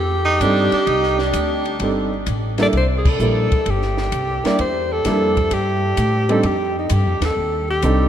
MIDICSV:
0, 0, Header, 1, 7, 480
1, 0, Start_track
1, 0, Tempo, 464396
1, 899, Time_signature, 4, 2, 24, 8
1, 8358, End_track
2, 0, Start_track
2, 0, Title_t, "Alto saxophone"
2, 0, Program_c, 0, 65
2, 0, Note_on_c, 0, 67, 97
2, 2353, Note_off_c, 0, 67, 0
2, 2714, Note_on_c, 0, 74, 91
2, 2772, Note_off_c, 0, 74, 0
2, 2865, Note_on_c, 0, 72, 86
2, 2959, Note_off_c, 0, 72, 0
2, 3081, Note_on_c, 0, 68, 77
2, 3195, Note_on_c, 0, 69, 94
2, 3210, Note_off_c, 0, 68, 0
2, 3829, Note_on_c, 0, 67, 97
2, 3844, Note_off_c, 0, 69, 0
2, 4625, Note_on_c, 0, 74, 85
2, 4641, Note_off_c, 0, 67, 0
2, 4753, Note_off_c, 0, 74, 0
2, 4760, Note_on_c, 0, 72, 83
2, 5089, Note_on_c, 0, 69, 94
2, 5104, Note_off_c, 0, 72, 0
2, 5721, Note_on_c, 0, 67, 96
2, 5737, Note_off_c, 0, 69, 0
2, 6535, Note_on_c, 0, 69, 80
2, 6551, Note_off_c, 0, 67, 0
2, 6679, Note_on_c, 0, 67, 90
2, 6694, Note_off_c, 0, 69, 0
2, 6999, Note_off_c, 0, 67, 0
2, 7018, Note_on_c, 0, 63, 75
2, 7164, Note_on_c, 0, 67, 82
2, 7179, Note_off_c, 0, 63, 0
2, 7481, Note_off_c, 0, 67, 0
2, 7495, Note_on_c, 0, 69, 82
2, 7930, Note_off_c, 0, 69, 0
2, 7966, Note_on_c, 0, 67, 92
2, 8358, Note_off_c, 0, 67, 0
2, 8358, End_track
3, 0, Start_track
3, 0, Title_t, "Grand piano"
3, 0, Program_c, 1, 0
3, 440, Note_on_c, 1, 55, 65
3, 440, Note_on_c, 1, 60, 58
3, 441, Note_on_c, 1, 62, 65
3, 448, Note_on_c, 1, 69, 71
3, 449, Note_on_c, 1, 63, 61
3, 726, Note_off_c, 1, 55, 0
3, 726, Note_off_c, 1, 60, 0
3, 727, Note_off_c, 1, 62, 0
3, 730, Note_off_c, 1, 63, 0
3, 730, Note_off_c, 1, 69, 0
3, 1877, Note_on_c, 1, 55, 54
3, 1878, Note_on_c, 1, 60, 50
3, 1885, Note_on_c, 1, 63, 52
3, 1886, Note_on_c, 1, 62, 51
3, 1890, Note_on_c, 1, 69, 63
3, 2164, Note_off_c, 1, 55, 0
3, 2165, Note_off_c, 1, 60, 0
3, 2169, Note_off_c, 1, 63, 0
3, 2170, Note_off_c, 1, 62, 0
3, 2171, Note_off_c, 1, 69, 0
3, 2670, Note_on_c, 1, 55, 76
3, 2671, Note_on_c, 1, 58, 67
3, 2677, Note_on_c, 1, 62, 63
3, 2681, Note_on_c, 1, 64, 69
3, 2692, Note_on_c, 1, 69, 89
3, 2806, Note_off_c, 1, 55, 0
3, 2806, Note_off_c, 1, 58, 0
3, 2809, Note_off_c, 1, 62, 0
3, 2811, Note_off_c, 1, 64, 0
3, 2817, Note_off_c, 1, 69, 0
3, 3306, Note_on_c, 1, 55, 57
3, 3308, Note_on_c, 1, 62, 55
3, 3309, Note_on_c, 1, 58, 53
3, 3318, Note_on_c, 1, 64, 58
3, 3324, Note_on_c, 1, 69, 68
3, 3599, Note_off_c, 1, 55, 0
3, 3601, Note_off_c, 1, 58, 0
3, 3601, Note_off_c, 1, 62, 0
3, 3605, Note_off_c, 1, 64, 0
3, 3609, Note_off_c, 1, 69, 0
3, 4588, Note_on_c, 1, 55, 67
3, 4596, Note_on_c, 1, 58, 67
3, 4599, Note_on_c, 1, 62, 66
3, 4610, Note_on_c, 1, 64, 64
3, 4612, Note_on_c, 1, 67, 81
3, 4725, Note_off_c, 1, 55, 0
3, 4729, Note_off_c, 1, 58, 0
3, 4730, Note_off_c, 1, 62, 0
3, 4736, Note_off_c, 1, 64, 0
3, 4737, Note_off_c, 1, 67, 0
3, 5221, Note_on_c, 1, 58, 59
3, 5225, Note_on_c, 1, 62, 68
3, 5228, Note_on_c, 1, 55, 72
3, 5235, Note_on_c, 1, 64, 66
3, 5237, Note_on_c, 1, 69, 73
3, 5517, Note_off_c, 1, 58, 0
3, 5519, Note_off_c, 1, 62, 0
3, 5520, Note_off_c, 1, 55, 0
3, 5524, Note_off_c, 1, 64, 0
3, 5525, Note_off_c, 1, 69, 0
3, 6500, Note_on_c, 1, 55, 76
3, 6510, Note_on_c, 1, 60, 73
3, 6513, Note_on_c, 1, 63, 71
3, 6514, Note_on_c, 1, 62, 76
3, 6521, Note_on_c, 1, 69, 80
3, 6641, Note_off_c, 1, 55, 0
3, 6646, Note_off_c, 1, 60, 0
3, 6647, Note_off_c, 1, 63, 0
3, 6648, Note_off_c, 1, 62, 0
3, 6651, Note_off_c, 1, 69, 0
3, 8096, Note_on_c, 1, 55, 72
3, 8096, Note_on_c, 1, 60, 68
3, 8101, Note_on_c, 1, 62, 68
3, 8105, Note_on_c, 1, 63, 68
3, 8108, Note_on_c, 1, 69, 83
3, 8358, Note_off_c, 1, 55, 0
3, 8358, Note_off_c, 1, 60, 0
3, 8358, Note_off_c, 1, 62, 0
3, 8358, Note_off_c, 1, 63, 0
3, 8358, Note_off_c, 1, 69, 0
3, 8358, End_track
4, 0, Start_track
4, 0, Title_t, "Tenor saxophone"
4, 0, Program_c, 2, 66
4, 259, Note_on_c, 2, 63, 101
4, 424, Note_on_c, 2, 62, 109
4, 440, Note_off_c, 2, 63, 0
4, 751, Note_off_c, 2, 62, 0
4, 755, Note_on_c, 2, 62, 99
4, 896, Note_on_c, 2, 63, 103
4, 912, Note_off_c, 2, 62, 0
4, 1229, Note_on_c, 2, 62, 88
4, 1244, Note_off_c, 2, 63, 0
4, 2189, Note_off_c, 2, 62, 0
4, 8358, End_track
5, 0, Start_track
5, 0, Title_t, "Upright bass"
5, 0, Program_c, 3, 32
5, 0, Note_on_c, 3, 41, 75
5, 397, Note_off_c, 3, 41, 0
5, 416, Note_on_c, 3, 43, 90
5, 724, Note_off_c, 3, 43, 0
5, 898, Note_on_c, 3, 36, 78
5, 1365, Note_off_c, 3, 36, 0
5, 1382, Note_on_c, 3, 38, 82
5, 1847, Note_off_c, 3, 38, 0
5, 1858, Note_on_c, 3, 31, 64
5, 2325, Note_off_c, 3, 31, 0
5, 2345, Note_on_c, 3, 33, 83
5, 2808, Note_off_c, 3, 33, 0
5, 2818, Note_on_c, 3, 36, 74
5, 3285, Note_off_c, 3, 36, 0
5, 3299, Note_on_c, 3, 34, 85
5, 3606, Note_off_c, 3, 34, 0
5, 3782, Note_on_c, 3, 31, 68
5, 4247, Note_off_c, 3, 31, 0
5, 4259, Note_on_c, 3, 36, 79
5, 4566, Note_off_c, 3, 36, 0
5, 4747, Note_on_c, 3, 40, 80
5, 5210, Note_off_c, 3, 40, 0
5, 5226, Note_on_c, 3, 41, 86
5, 5689, Note_off_c, 3, 41, 0
5, 5695, Note_on_c, 3, 43, 80
5, 6163, Note_off_c, 3, 43, 0
5, 6175, Note_on_c, 3, 45, 91
5, 6643, Note_off_c, 3, 45, 0
5, 6651, Note_on_c, 3, 41, 77
5, 7121, Note_off_c, 3, 41, 0
5, 7137, Note_on_c, 3, 43, 94
5, 7296, Note_off_c, 3, 43, 0
5, 7296, Note_on_c, 3, 41, 49
5, 7441, Note_off_c, 3, 41, 0
5, 7448, Note_on_c, 3, 39, 68
5, 7602, Note_off_c, 3, 39, 0
5, 7609, Note_on_c, 3, 39, 69
5, 8080, Note_off_c, 3, 39, 0
5, 8093, Note_on_c, 3, 36, 91
5, 8358, Note_off_c, 3, 36, 0
5, 8358, End_track
6, 0, Start_track
6, 0, Title_t, "Muted upright bass strokes"
6, 747, Note_on_c, 9, 29, 38
6, 850, Note_off_c, 9, 29, 0
6, 3635, Note_on_c, 9, 29, 39
6, 3739, Note_off_c, 9, 29, 0
6, 4594, Note_on_c, 9, 29, 43
6, 4697, Note_off_c, 9, 29, 0
6, 8358, End_track
7, 0, Start_track
7, 0, Title_t, "Drums"
7, 420, Note_on_c, 9, 44, 61
7, 420, Note_on_c, 9, 51, 63
7, 423, Note_on_c, 9, 36, 26
7, 524, Note_off_c, 9, 44, 0
7, 524, Note_off_c, 9, 51, 0
7, 527, Note_off_c, 9, 36, 0
7, 745, Note_on_c, 9, 51, 51
7, 848, Note_off_c, 9, 51, 0
7, 899, Note_on_c, 9, 51, 60
7, 903, Note_on_c, 9, 36, 23
7, 1002, Note_off_c, 9, 51, 0
7, 1007, Note_off_c, 9, 36, 0
7, 1066, Note_on_c, 9, 38, 30
7, 1169, Note_off_c, 9, 38, 0
7, 1227, Note_on_c, 9, 38, 43
7, 1331, Note_off_c, 9, 38, 0
7, 1379, Note_on_c, 9, 44, 57
7, 1379, Note_on_c, 9, 51, 72
7, 1383, Note_on_c, 9, 36, 25
7, 1482, Note_off_c, 9, 44, 0
7, 1482, Note_off_c, 9, 51, 0
7, 1487, Note_off_c, 9, 36, 0
7, 1709, Note_on_c, 9, 51, 43
7, 1813, Note_off_c, 9, 51, 0
7, 1856, Note_on_c, 9, 51, 64
7, 1864, Note_on_c, 9, 36, 21
7, 1959, Note_off_c, 9, 51, 0
7, 1967, Note_off_c, 9, 36, 0
7, 2340, Note_on_c, 9, 44, 51
7, 2340, Note_on_c, 9, 51, 67
7, 2345, Note_on_c, 9, 36, 27
7, 2444, Note_off_c, 9, 44, 0
7, 2444, Note_off_c, 9, 51, 0
7, 2449, Note_off_c, 9, 36, 0
7, 2665, Note_on_c, 9, 51, 50
7, 2670, Note_on_c, 9, 38, 48
7, 2769, Note_off_c, 9, 51, 0
7, 2774, Note_off_c, 9, 38, 0
7, 2819, Note_on_c, 9, 51, 54
7, 2826, Note_on_c, 9, 36, 24
7, 2923, Note_off_c, 9, 51, 0
7, 2929, Note_off_c, 9, 36, 0
7, 3155, Note_on_c, 9, 49, 80
7, 3157, Note_on_c, 9, 36, 85
7, 3258, Note_off_c, 9, 49, 0
7, 3260, Note_off_c, 9, 36, 0
7, 3303, Note_on_c, 9, 44, 53
7, 3406, Note_off_c, 9, 44, 0
7, 3635, Note_on_c, 9, 51, 49
7, 3638, Note_on_c, 9, 36, 67
7, 3738, Note_off_c, 9, 51, 0
7, 3741, Note_off_c, 9, 36, 0
7, 3782, Note_on_c, 9, 51, 65
7, 3788, Note_on_c, 9, 36, 25
7, 3885, Note_off_c, 9, 51, 0
7, 3892, Note_off_c, 9, 36, 0
7, 3946, Note_on_c, 9, 38, 26
7, 4050, Note_off_c, 9, 38, 0
7, 4108, Note_on_c, 9, 38, 44
7, 4212, Note_off_c, 9, 38, 0
7, 4259, Note_on_c, 9, 44, 56
7, 4259, Note_on_c, 9, 51, 67
7, 4266, Note_on_c, 9, 36, 26
7, 4362, Note_off_c, 9, 44, 0
7, 4362, Note_off_c, 9, 51, 0
7, 4370, Note_off_c, 9, 36, 0
7, 4598, Note_on_c, 9, 51, 49
7, 4603, Note_on_c, 9, 38, 59
7, 4701, Note_off_c, 9, 51, 0
7, 4706, Note_off_c, 9, 38, 0
7, 4740, Note_on_c, 9, 51, 57
7, 4748, Note_on_c, 9, 36, 25
7, 4844, Note_off_c, 9, 51, 0
7, 4852, Note_off_c, 9, 36, 0
7, 5216, Note_on_c, 9, 44, 57
7, 5216, Note_on_c, 9, 51, 68
7, 5222, Note_on_c, 9, 38, 36
7, 5224, Note_on_c, 9, 36, 18
7, 5320, Note_off_c, 9, 44, 0
7, 5320, Note_off_c, 9, 51, 0
7, 5325, Note_off_c, 9, 38, 0
7, 5327, Note_off_c, 9, 36, 0
7, 5549, Note_on_c, 9, 51, 45
7, 5552, Note_on_c, 9, 36, 55
7, 5653, Note_off_c, 9, 51, 0
7, 5655, Note_off_c, 9, 36, 0
7, 5695, Note_on_c, 9, 51, 73
7, 5700, Note_on_c, 9, 36, 22
7, 5798, Note_off_c, 9, 51, 0
7, 5803, Note_off_c, 9, 36, 0
7, 6172, Note_on_c, 9, 44, 64
7, 6172, Note_on_c, 9, 51, 76
7, 6178, Note_on_c, 9, 36, 21
7, 6275, Note_off_c, 9, 44, 0
7, 6275, Note_off_c, 9, 51, 0
7, 6281, Note_off_c, 9, 36, 0
7, 6502, Note_on_c, 9, 51, 50
7, 6606, Note_off_c, 9, 51, 0
7, 6649, Note_on_c, 9, 51, 63
7, 6657, Note_on_c, 9, 36, 19
7, 6752, Note_off_c, 9, 51, 0
7, 6760, Note_off_c, 9, 36, 0
7, 7127, Note_on_c, 9, 44, 60
7, 7127, Note_on_c, 9, 51, 81
7, 7137, Note_on_c, 9, 36, 24
7, 7230, Note_off_c, 9, 44, 0
7, 7230, Note_off_c, 9, 51, 0
7, 7240, Note_off_c, 9, 36, 0
7, 7459, Note_on_c, 9, 51, 70
7, 7464, Note_on_c, 9, 38, 52
7, 7562, Note_off_c, 9, 51, 0
7, 7568, Note_off_c, 9, 38, 0
7, 7617, Note_on_c, 9, 36, 22
7, 7720, Note_off_c, 9, 36, 0
7, 8087, Note_on_c, 9, 44, 66
7, 8087, Note_on_c, 9, 51, 71
7, 8097, Note_on_c, 9, 36, 25
7, 8190, Note_off_c, 9, 44, 0
7, 8190, Note_off_c, 9, 51, 0
7, 8200, Note_off_c, 9, 36, 0
7, 8358, End_track
0, 0, End_of_file